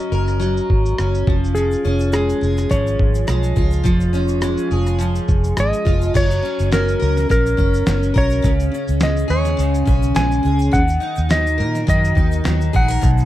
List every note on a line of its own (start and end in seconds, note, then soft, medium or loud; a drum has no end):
0.00 0.38 F#3 medium
0.00 0.98 C#4 medium
0.00 0.38 D#5 medium
0.12 0.59 F#1 medium
0.12 1.33 A#4 medium
0.12 shaker soft
0.28 cross-stick soft
0.28 shaker soft
0.40 1.33 F#3 medium
0.40 shaker medium
0.57 shaker soft
0.70 0.94 G#1 medium
0.70 kick medium
0.86 shaker medium
0.98 1.22 F#1 medium
0.98 1.84 C#4 medium
0.98 cross-stick loud
0.98 shaker medium
1.15 shaker soft
1.27 1.74 F1 medium
1.27 1.54 F3 medium
1.27 kick medium
1.44 shaker soft
1.55 2.68 F3 medium
1.55 2.09 G#4 medium
1.55 shaker medium
1.71 shaker soft
1.73 shaker soft
1.85 2.32 F1 medium
1.85 4.13 C#4 medium
1.85 shaker soft
1.99 shaker soft
2.01 shaker medium
2.12 3.26 G#3 medium
2.12 2.73 G#4 medium
2.12 cross-stick loud
2.12 shaker medium
2.29 shaker soft
2.41 2.66 F1 medium
2.41 4.70 G#4 medium
2.41 shaker soft
2.57 cross-stick soft
2.57 shaker soft
2.69 2.95 G#1 loud
2.69 3.82 F3 medium
2.69 5.54 C#5 medium
2.69 kick medium
2.69 shaker medium
2.87 shaker soft
2.99 3.23 G#1 medium
2.99 kick medium
3.14 shaker soft
3.27 3.52 B1 medium
3.27 4.40 G#3 medium
3.27 cross-stick loud
3.27 shaker medium
3.43 shaker soft
3.56 3.81 C#2 medium
3.56 5.84 F4 medium
3.56 kick medium
3.56 shaker soft
3.71 shaker soft
3.73 shaker soft
3.84 4.55 F1 loud
3.84 4.97 F3 medium
3.84 kick loud
3.84 shaker medium
4.00 shaker soft
4.13 6.42 C#4 medium
4.13 shaker soft
4.28 shaker soft
4.41 5.56 G#3 medium
4.41 cross-stick loud
4.41 shaker medium
4.57 shaker soft
4.71 5.19 F1 medium
4.71 6.21 G#4 medium
4.71 shaker soft
4.86 cross-stick soft
4.86 shaker soft
4.99 6.20 F3 medium
4.99 shaker medium
5.01 shaker medium
5.15 shaker soft
5.28 5.52 F1 medium
5.28 kick medium
5.28 shaker soft
5.44 shaker medium
5.57 5.71 G#1 medium
5.57 6.14 G#3 medium
5.57 6.16 D#5 loud
5.57 cross-stick loud
5.57 shaker medium
5.73 shaker soft
5.85 6.10 F1 medium
5.85 6.21 F4 medium
5.85 kick medium
5.85 shaker soft
6.01 shaker soft
6.14 6.39 F#1 loud
6.14 7.28 F#3 medium
6.14 6.69 C#5 loud
6.14 kick loud
6.14 crash medium
6.14 shaker medium
6.31 shaker soft
6.42 6.71 C#4 medium
6.42 shaker medium
6.59 6.94 F#1 medium
6.59 shaker medium
6.59 shaker soft
6.71 7.57 C#4 medium
6.71 7.30 A#4 medium
6.71 snare loud
6.71 shaker medium
6.88 shaker soft
7.00 7.25 C#2 medium
7.00 8.13 A#4 medium
7.00 shaker medium
7.17 snare soft
7.17 shaker soft
7.17 shaker medium
7.29 7.54 A#1 medium
7.29 8.50 F#3 medium
7.29 8.19 A#4 medium
7.29 kick medium
7.29 shaker medium
7.46 shaker soft
7.46 shaker medium
7.57 7.82 F#1 medium
7.57 7.86 C#4 medium
7.57 kick medium
7.57 shaker medium
7.73 shaker medium
7.86 8.11 F#1 medium
7.86 8.71 C#4 medium
7.86 snare loud
7.86 shaker medium
8.03 shaker soft
8.14 8.39 B1 medium
8.14 8.50 A#4 medium
8.14 8.99 C#5 loud
8.14 kick medium
8.14 shaker soft
8.30 shaker soft
8.32 shaker soft
8.42 8.68 C#2 loud
8.42 9.56 C#3 medium
8.42 kick loud
8.42 shaker medium
8.60 shaker soft
8.72 9.84 C#4 medium
8.72 shaker medium
8.88 9.23 C#2 medium
8.88 shaker medium
8.88 shaker soft
9.00 10.13 G#3 medium
9.00 snare loud
9.00 shaker medium
9.02 9.32 D#5 medium
9.02 shaker medium
9.17 shaker soft
9.19 shaker soft
9.28 9.53 D#2 medium
9.28 10.42 G#4 medium
9.28 9.84 C#5 medium
9.28 shaker medium
9.45 snare soft
9.45 shaker soft
9.45 shaker medium
9.57 9.82 C#2 medium
9.57 10.71 C#3 medium
9.57 shaker medium
9.74 shaker medium
9.74 shaker soft
9.85 10.11 B1 medium
9.85 10.79 C#4 medium
9.85 kick medium
9.85 shaker medium
10.03 shaker medium
10.15 10.40 A#1 medium
10.15 10.79 G#3 medium
10.15 10.69 G#5 loud
10.15 snare loud
10.15 shaker medium
10.31 shaker soft
10.31 shaker medium
10.43 10.68 C#2 medium
10.43 10.79 G#4 medium
10.43 shaker soft
10.59 shaker soft
10.61 shaker medium
10.71 10.97 D#2 loud
10.71 11.86 D#3 medium
10.71 11.32 F#5 loud
10.71 kick loud
10.71 shaker medium
10.74 shaker medium
10.88 shaker soft
10.90 shaker soft
11.00 12.15 D#4 medium
11.00 shaker soft
11.16 shaker soft
11.18 11.61 D#2 medium
11.18 shaker medium
11.29 12.44 F#3 medium
11.29 11.84 D#5 medium
11.29 snare loud
11.29 shaker medium
11.47 shaker soft
11.58 11.83 A#2 medium
11.58 12.73 A#4 medium
11.58 shaker medium
11.75 snare soft
11.75 shaker soft
11.75 shaker medium
11.87 12.12 F#2 medium
11.87 13.25 D#3 medium
11.87 12.77 D#5 medium
11.87 kick medium
11.87 shaker medium
12.05 shaker medium
12.05 shaker soft
12.15 12.40 D#2 loud
12.15 13.25 D#4 medium
12.15 kick medium
12.15 shaker medium
12.32 shaker medium
12.44 12.69 D#2 medium
12.44 13.25 F#3 medium
12.44 snare loud
12.44 shaker medium
12.61 shaker soft
12.73 12.98 A#1 medium
12.73 12.88 G#4 medium
12.73 13.25 F#5 loud
12.73 kick medium
12.73 shaker soft
12.88 13.08 A#4 medium
12.88 shaker soft
12.91 shaker medium
13.01 13.25 B1 loud
13.01 13.25 B2 medium
13.01 kick loud
13.01 shaker medium
13.18 shaker soft
13.20 shaker soft